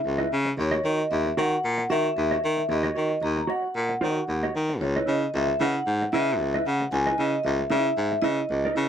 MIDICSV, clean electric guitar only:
0, 0, Header, 1, 3, 480
1, 0, Start_track
1, 0, Tempo, 526778
1, 536, Time_signature, 4, 2, 24, 8
1, 8097, End_track
2, 0, Start_track
2, 0, Title_t, "Clean electric guitar"
2, 0, Program_c, 0, 27
2, 166, Note_on_c, 0, 75, 86
2, 175, Note_on_c, 0, 71, 87
2, 180, Note_on_c, 0, 64, 73
2, 269, Note_off_c, 0, 64, 0
2, 272, Note_off_c, 0, 71, 0
2, 276, Note_off_c, 0, 75, 0
2, 651, Note_on_c, 0, 75, 100
2, 660, Note_on_c, 0, 73, 84
2, 672, Note_on_c, 0, 66, 80
2, 757, Note_off_c, 0, 66, 0
2, 767, Note_off_c, 0, 73, 0
2, 768, Note_on_c, 0, 66, 73
2, 775, Note_off_c, 0, 75, 0
2, 778, Note_on_c, 0, 73, 69
2, 786, Note_on_c, 0, 75, 77
2, 896, Note_off_c, 0, 75, 0
2, 913, Note_off_c, 0, 66, 0
2, 913, Note_off_c, 0, 73, 0
2, 1251, Note_on_c, 0, 66, 106
2, 1258, Note_on_c, 0, 73, 91
2, 1263, Note_on_c, 0, 75, 99
2, 1365, Note_off_c, 0, 75, 0
2, 1375, Note_off_c, 0, 73, 0
2, 1426, Note_off_c, 0, 66, 0
2, 1730, Note_on_c, 0, 66, 100
2, 1745, Note_on_c, 0, 73, 96
2, 1750, Note_on_c, 0, 75, 99
2, 1856, Note_off_c, 0, 75, 0
2, 1874, Note_off_c, 0, 73, 0
2, 1905, Note_off_c, 0, 66, 0
2, 2106, Note_on_c, 0, 75, 93
2, 2113, Note_on_c, 0, 73, 90
2, 2128, Note_on_c, 0, 66, 79
2, 2190, Note_off_c, 0, 66, 0
2, 2200, Note_off_c, 0, 73, 0
2, 2201, Note_off_c, 0, 75, 0
2, 2583, Note_on_c, 0, 75, 92
2, 2594, Note_on_c, 0, 73, 86
2, 2603, Note_on_c, 0, 66, 61
2, 2672, Note_off_c, 0, 66, 0
2, 2683, Note_off_c, 0, 73, 0
2, 2683, Note_on_c, 0, 66, 78
2, 2688, Note_off_c, 0, 75, 0
2, 2694, Note_on_c, 0, 73, 81
2, 2699, Note_on_c, 0, 75, 83
2, 2811, Note_off_c, 0, 75, 0
2, 2831, Note_off_c, 0, 66, 0
2, 2831, Note_off_c, 0, 73, 0
2, 3165, Note_on_c, 0, 66, 79
2, 3177, Note_on_c, 0, 73, 76
2, 3185, Note_on_c, 0, 75, 86
2, 3294, Note_off_c, 0, 75, 0
2, 3308, Note_off_c, 0, 73, 0
2, 3343, Note_off_c, 0, 66, 0
2, 3655, Note_on_c, 0, 66, 95
2, 3664, Note_on_c, 0, 73, 94
2, 3673, Note_on_c, 0, 75, 93
2, 3793, Note_off_c, 0, 75, 0
2, 3800, Note_off_c, 0, 73, 0
2, 3843, Note_off_c, 0, 66, 0
2, 4040, Note_on_c, 0, 75, 77
2, 4048, Note_on_c, 0, 73, 76
2, 4052, Note_on_c, 0, 66, 71
2, 4130, Note_off_c, 0, 66, 0
2, 4140, Note_off_c, 0, 73, 0
2, 4144, Note_off_c, 0, 75, 0
2, 4521, Note_on_c, 0, 75, 81
2, 4530, Note_on_c, 0, 71, 74
2, 4538, Note_on_c, 0, 64, 62
2, 4600, Note_off_c, 0, 64, 0
2, 4611, Note_on_c, 0, 64, 75
2, 4613, Note_off_c, 0, 71, 0
2, 4623, Note_off_c, 0, 75, 0
2, 4624, Note_on_c, 0, 71, 69
2, 4633, Note_on_c, 0, 75, 75
2, 4751, Note_off_c, 0, 75, 0
2, 4755, Note_off_c, 0, 64, 0
2, 4761, Note_off_c, 0, 71, 0
2, 5107, Note_on_c, 0, 64, 77
2, 5118, Note_on_c, 0, 71, 102
2, 5124, Note_on_c, 0, 75, 95
2, 5245, Note_off_c, 0, 75, 0
2, 5257, Note_off_c, 0, 71, 0
2, 5274, Note_off_c, 0, 64, 0
2, 5585, Note_on_c, 0, 64, 96
2, 5599, Note_on_c, 0, 71, 108
2, 5608, Note_on_c, 0, 75, 117
2, 5721, Note_off_c, 0, 75, 0
2, 5735, Note_off_c, 0, 71, 0
2, 5752, Note_off_c, 0, 64, 0
2, 5963, Note_on_c, 0, 75, 93
2, 5971, Note_on_c, 0, 71, 84
2, 5984, Note_on_c, 0, 64, 78
2, 6055, Note_off_c, 0, 64, 0
2, 6065, Note_off_c, 0, 71, 0
2, 6071, Note_off_c, 0, 75, 0
2, 6438, Note_on_c, 0, 75, 94
2, 6448, Note_on_c, 0, 71, 82
2, 6461, Note_on_c, 0, 64, 74
2, 6539, Note_off_c, 0, 64, 0
2, 6543, Note_off_c, 0, 71, 0
2, 6550, Note_on_c, 0, 64, 78
2, 6554, Note_off_c, 0, 75, 0
2, 6554, Note_on_c, 0, 71, 80
2, 6565, Note_on_c, 0, 75, 89
2, 6666, Note_off_c, 0, 75, 0
2, 6680, Note_off_c, 0, 71, 0
2, 6684, Note_off_c, 0, 64, 0
2, 7019, Note_on_c, 0, 64, 93
2, 7028, Note_on_c, 0, 71, 96
2, 7037, Note_on_c, 0, 75, 112
2, 7153, Note_off_c, 0, 75, 0
2, 7166, Note_off_c, 0, 71, 0
2, 7205, Note_off_c, 0, 64, 0
2, 7492, Note_on_c, 0, 64, 93
2, 7504, Note_on_c, 0, 71, 93
2, 7513, Note_on_c, 0, 75, 100
2, 7625, Note_off_c, 0, 75, 0
2, 7640, Note_off_c, 0, 71, 0
2, 7666, Note_off_c, 0, 64, 0
2, 7880, Note_on_c, 0, 75, 77
2, 7889, Note_on_c, 0, 71, 81
2, 7898, Note_on_c, 0, 64, 73
2, 7965, Note_off_c, 0, 64, 0
2, 7975, Note_on_c, 0, 64, 74
2, 7978, Note_off_c, 0, 71, 0
2, 7985, Note_off_c, 0, 75, 0
2, 7989, Note_on_c, 0, 71, 81
2, 7996, Note_on_c, 0, 75, 86
2, 8097, Note_off_c, 0, 64, 0
2, 8097, Note_off_c, 0, 71, 0
2, 8097, Note_off_c, 0, 75, 0
2, 8097, End_track
3, 0, Start_track
3, 0, Title_t, "Muted clean electric guitar strokes"
3, 35, Note_on_c, 9, 29, 46
3, 126, Note_off_c, 9, 29, 0
3, 279, Note_on_c, 9, 29, 47
3, 371, Note_off_c, 9, 29, 0
3, 414, Note_on_c, 9, 29, 57
3, 505, Note_off_c, 9, 29, 0
3, 522, Note_on_c, 9, 29, 38
3, 613, Note_off_c, 9, 29, 0
3, 907, Note_on_c, 9, 29, 42
3, 998, Note_off_c, 9, 29, 0
3, 1015, Note_on_c, 9, 29, 37
3, 1106, Note_off_c, 9, 29, 0
3, 1143, Note_on_c, 9, 29, 51
3, 1234, Note_off_c, 9, 29, 0
3, 1376, Note_on_c, 9, 29, 40
3, 1467, Note_off_c, 9, 29, 0
3, 1620, Note_on_c, 9, 29, 45
3, 1711, Note_off_c, 9, 29, 0
3, 1867, Note_on_c, 9, 29, 45
3, 1958, Note_off_c, 9, 29, 0
3, 1969, Note_on_c, 9, 29, 44
3, 2060, Note_off_c, 9, 29, 0
3, 2201, Note_on_c, 9, 29, 46
3, 2292, Note_off_c, 9, 29, 0
3, 2345, Note_on_c, 9, 29, 39
3, 2436, Note_off_c, 9, 29, 0
3, 2448, Note_on_c, 9, 29, 44
3, 2540, Note_off_c, 9, 29, 0
3, 2822, Note_on_c, 9, 29, 39
3, 2913, Note_off_c, 9, 29, 0
3, 2929, Note_on_c, 9, 29, 44
3, 3020, Note_off_c, 9, 29, 0
3, 3069, Note_on_c, 9, 29, 47
3, 3160, Note_off_c, 9, 29, 0
3, 3305, Note_on_c, 9, 29, 49
3, 3396, Note_off_c, 9, 29, 0
3, 3546, Note_on_c, 9, 29, 39
3, 3638, Note_off_c, 9, 29, 0
3, 3804, Note_on_c, 9, 29, 50
3, 3895, Note_off_c, 9, 29, 0
3, 3898, Note_on_c, 9, 29, 49
3, 3989, Note_off_c, 9, 29, 0
3, 4141, Note_on_c, 9, 29, 43
3, 4232, Note_off_c, 9, 29, 0
3, 4278, Note_on_c, 9, 29, 39
3, 4369, Note_off_c, 9, 29, 0
3, 4386, Note_on_c, 9, 29, 42
3, 4477, Note_off_c, 9, 29, 0
3, 4762, Note_on_c, 9, 29, 45
3, 4853, Note_off_c, 9, 29, 0
3, 4873, Note_on_c, 9, 29, 39
3, 4965, Note_off_c, 9, 29, 0
3, 4988, Note_on_c, 9, 29, 51
3, 5079, Note_off_c, 9, 29, 0
3, 5256, Note_on_c, 9, 29, 43
3, 5347, Note_off_c, 9, 29, 0
3, 5487, Note_on_c, 9, 29, 52
3, 5578, Note_off_c, 9, 29, 0
3, 5732, Note_on_c, 9, 29, 49
3, 5823, Note_off_c, 9, 29, 0
3, 5829, Note_on_c, 9, 29, 43
3, 5921, Note_off_c, 9, 29, 0
3, 6066, Note_on_c, 9, 29, 38
3, 6158, Note_off_c, 9, 29, 0
3, 6203, Note_on_c, 9, 29, 51
3, 6294, Note_off_c, 9, 29, 0
3, 6312, Note_on_c, 9, 29, 45
3, 6403, Note_off_c, 9, 29, 0
3, 6677, Note_on_c, 9, 29, 38
3, 6768, Note_off_c, 9, 29, 0
3, 6784, Note_on_c, 9, 29, 45
3, 6875, Note_off_c, 9, 29, 0
3, 6924, Note_on_c, 9, 29, 43
3, 7015, Note_off_c, 9, 29, 0
3, 7164, Note_on_c, 9, 29, 40
3, 7255, Note_off_c, 9, 29, 0
3, 7397, Note_on_c, 9, 29, 51
3, 7489, Note_off_c, 9, 29, 0
3, 7636, Note_on_c, 9, 29, 51
3, 7727, Note_off_c, 9, 29, 0
3, 7744, Note_on_c, 9, 29, 44
3, 7835, Note_off_c, 9, 29, 0
3, 8097, End_track
0, 0, End_of_file